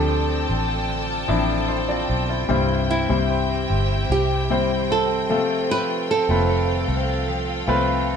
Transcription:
0.00 0.45 D2 medium
0.00 0.45 A2 soft
0.00 0.87 D3 medium
0.00 1.28 F3 medium
0.00 0.28 C4 soft
0.00 1.28 C4 medium
0.00 1.29 D4 medium
0.00 0.67 F4 soft
0.00 1.22 G4 medium
0.00 0.45 A4 medium
0.00 2.46 A4 medium
0.00 2.51 A4 medium
0.00 2.46 D5 medium
0.00 8.16 G5 medium
0.00 2.46 A5 medium
0.09 0.48 C5 medium
0.28 1.27 C4 soft
0.48 1.25 A1 medium
0.48 1.68 C5 soft
0.69 1.07 F4 soft
0.89 2.58 D3 medium
1.09 1.47 F4 soft
1.28 2.05 A1 medium
1.28 2.43 F3 medium
1.28 1.88 C4 soft
1.28 2.43 C4 medium
1.28 2.44 D4 medium
1.28 1.68 E4 medium
1.48 2.28 F4 soft
1.68 1.88 E4 soft
1.68 2.08 C5 soft
1.68 1.88 C5 medium
1.88 2.90 C4 soft
1.88 2.27 F4 soft
1.88 2.27 D5 medium
2.09 2.47 B1 medium
2.09 3.30 C5 soft
2.29 2.48 E4 soft
2.29 2.57 F4 soft
2.29 2.48 C5 soft
2.49 3.06 C2 medium
2.49 3.66 G2 medium
2.49 4.09 C3 medium
2.49 3.06 G3 medium
2.49 3.06 C4 medium
2.49 8.16 C4 soft
2.49 3.07 E4 medium
2.49 5.28 G4 medium
2.49 3.07 C5 medium
2.49 5.27 E5 medium
2.69 3.09 E4 soft
2.90 3.49 C4 soft
2.90 3.66 E4 medium
3.09 3.66 C2 medium
3.09 4.43 G3 soft
3.09 4.43 C4 soft
3.09 4.43 E4 medium
3.09 3.89 E4 soft
3.09 4.43 C5 medium
3.30 3.69 C5 medium
3.50 4.49 C4 soft
3.70 4.07 G1 medium
3.70 4.89 C5 soft
3.90 4.29 E4 soft
4.10 5.30 C2 medium
4.10 5.38 C3 medium
4.10 4.91 G4 medium
4.30 4.69 E4 soft
4.50 5.30 G3 medium
4.50 5.09 C4 soft
4.50 5.29 C4 medium
4.50 5.30 E4 medium
4.50 5.31 C5 medium
4.70 5.38 E4 soft
4.90 5.71 A4 medium
4.90 6.49 C5 medium
5.09 6.09 C4 soft
5.29 6.25 F1 medium
5.29 6.45 C3 soft
5.29 5.68 F3 medium
5.29 6.24 A3 medium
5.29 6.24 C4 medium
5.29 6.24 F4 medium
5.29 8.16 A4 medium
5.29 6.24 A4 medium
5.29 8.16 F5 medium
5.49 5.88 F4 soft
5.69 7.27 F3 medium
5.69 6.08 B4 medium
5.89 6.28 F4 soft
6.10 6.68 C4 soft
6.10 6.86 A4 medium
6.29 6.85 F1 medium
6.29 7.61 A3 medium
6.29 7.61 C4 medium
6.29 7.07 F4 soft
6.29 7.62 F4 medium
6.29 7.62 B4 medium
6.50 6.87 A4 medium
6.69 7.68 C4 soft
6.88 7.64 C2 medium
6.88 8.06 A4 medium
7.08 7.47 F4 soft
7.28 8.16 F3 medium
7.48 7.86 F4 soft
7.67 8.16 C2 medium
7.67 8.16 A3 medium
7.67 8.16 C4 medium
7.67 8.16 C4 soft
7.67 8.16 F4 medium
7.67 8.16 B4 medium
7.88 8.16 F4 soft
8.07 8.16 A4 medium

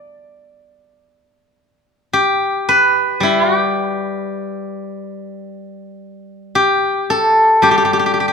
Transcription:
0.00 0.77 D5 medium
0.00 0.11 E5 medium
2.13 3.23 G4 medium
2.69 4.73 B4 medium
3.20 6.54 G3 soft
3.20 3.56 E4 medium
3.56 5.59 G4 medium
6.55 7.63 G4 medium
7.10 8.33 A4 medium
7.62 8.33 G3 soft
7.62 7.71 G4 medium
7.71 7.77 G4 soft
7.78 7.84 G4 soft
7.85 7.93 G4 soft
7.93 7.99 G4 soft
7.99 8.06 G4 soft
8.06 8.13 G4 soft
8.14 8.20 G4 soft
8.20 8.28 G4 soft
8.28 8.33 G4 soft

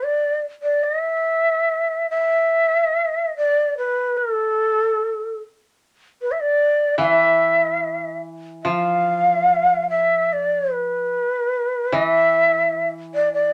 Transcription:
0.03 0.39 D5 medium
0.63 0.85 D5 medium
0.84 2.09 E5 medium
2.11 3.32 E5 medium
3.37 3.74 D5 medium
3.78 4.19 B4 medium
4.17 5.38 A4 medium
6.22 6.33 B4 medium
6.32 6.42 E5 medium
6.41 6.99 D5 medium
6.98 9.50 E3 medium
6.98 7.05 F5 medium
7.04 8.19 E5 medium
8.64 11.14 F3 soft
8.64 9.88 F5 medium
9.90 10.34 E5 medium
10.33 10.73 D5 medium
10.72 11.95 B4 medium
11.92 13.53 E3 soft
11.92 12.87 E5 medium
13.15 13.32 D5 medium
13.34 13.53 D5 medium

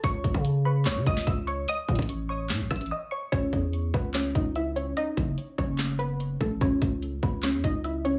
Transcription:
0.04 0.23 C#2 loud
0.04 0.43 C#5 medium
0.04 0.43 C#6 loud
0.04 kick loud
0.04 closed hi-hat medium
0.24 0.34 C#2 loud
0.24 kick medium
0.24 closed hi-hat medium
0.34 0.87 C#3 loud
0.34 kick medium
0.45 closed hi-hat medium
0.65 0.85 B4 medium
0.65 0.84 B5 medium
0.85 0.98 B1 loud
0.85 1.05 C#5 medium
0.85 1.05 C#6 medium
0.85 snare loud
0.85 clap medium
0.85 closed hi-hat medium
0.96 1.06 C#3 loud
1.06 1.26 C#2 loud
1.06 1.26 D#5 medium
1.06 1.26 D#6 medium
1.06 kick loud
1.06 closed hi-hat medium
1.17 snare medium
1.27 1.66 C#2 loud
1.27 1.46 E5 medium
1.27 1.46 E6 medium
1.27 kick medium
1.27 closed hi-hat medium
1.47 1.67 C#5 medium
1.47 1.66 C#6 medium
1.47 closed hi-hat medium
1.68 2.07 D#5 medium
1.68 2.07 D#6 loud
1.68 closed hi-hat medium
1.89 1.98 A2 loud
1.89 kick medium
1.89 closed hi-hat soft
1.95 2.52 A1 loud
1.95 kick medium
1.95 closed hi-hat medium
2.02 closed hi-hat medium
2.09 closed hi-hat medium
2.29 2.49 C#5 medium
2.29 2.48 C#6 medium
2.50 2.62 A2 loud
2.50 snare loud
2.50 clap medium
2.50 closed hi-hat medium
2.60 2.70 A1 loud
2.71 2.91 A1 loud
2.71 2.90 E5 medium
2.71 2.90 E6 medium
2.71 kick loud
2.71 cross-stick medium
2.71 closed hi-hat medium
2.76 closed hi-hat medium
2.81 closed hi-hat medium
2.86 closed hi-hat soft
2.91 3.11 D#5 medium
2.91 3.10 D#6 medium
3.11 3.31 C#5 medium
3.11 3.30 C#6 medium
3.32 3.52 C#2 loud
3.32 3.71 C#4 medium
3.32 3.71 C#5 loud
3.32 kick loud
3.32 closed hi-hat medium
3.53 3.92 E2 loud
3.53 kick medium
3.53 closed hi-hat medium
3.73 closed hi-hat medium
3.94 4.33 C#2 loud
3.94 4.13 B3 medium
3.94 4.13 B4 medium
3.94 kick loud
4.14 4.34 C#4 medium
4.14 4.33 C#5 medium
4.14 snare loud
4.14 clap medium
4.14 closed hi-hat loud
4.35 4.94 C#2 loud
4.35 4.55 D#4 medium
4.35 4.54 D#5 medium
4.35 kick medium
4.35 closed hi-hat medium
4.56 4.75 E4 medium
4.56 4.75 E5 medium
4.56 closed hi-hat medium
4.76 4.95 C#4 medium
4.76 4.95 C#5 medium
4.76 closed hi-hat medium
4.97 5.36 D#4 medium
4.97 5.35 D#5 loud
4.97 closed hi-hat medium
5.17 5.37 F#1 loud
5.17 kick loud
5.17 closed hi-hat medium
5.38 closed hi-hat medium
5.58 6.37 F#1 loud
5.58 5.78 C#4 medium
5.58 5.77 C#5 medium
5.58 kick loud
5.79 snare loud
5.79 clap medium
5.79 closed hi-hat medium
5.99 6.38 B3 medium
5.99 6.38 B4 medium
5.99 closed hi-hat medium
6.20 closed hi-hat medium
6.41 6.60 A1 loud
6.41 6.60 A3 medium
6.41 6.60 A4 medium
6.41 kick medium
6.61 6.81 C#2 loud
6.61 7.01 C#4 medium
6.61 7.00 C#5 loud
6.61 kick loud
6.61 closed hi-hat medium
6.82 7.21 C#2 loud
6.82 kick medium
6.82 closed hi-hat medium
7.02 closed hi-hat medium
7.23 7.55 C#2 loud
7.23 7.42 B3 medium
7.23 7.42 B4 medium
7.23 kick loud
7.43 7.63 C#4 medium
7.43 7.62 C#5 medium
7.43 snare loud
7.43 clap medium
7.43 closed hi-hat loud
7.54 7.63 E2 loud
7.64 8.19 C#2 loud
7.64 7.84 D#4 medium
7.64 7.83 D#5 medium
7.64 kick medium
7.64 closed hi-hat medium
7.84 8.04 E4 medium
7.84 8.03 E5 medium
7.84 closed hi-hat medium
8.05 8.19 C#4 medium
8.05 8.19 C#5 medium
8.05 closed hi-hat medium

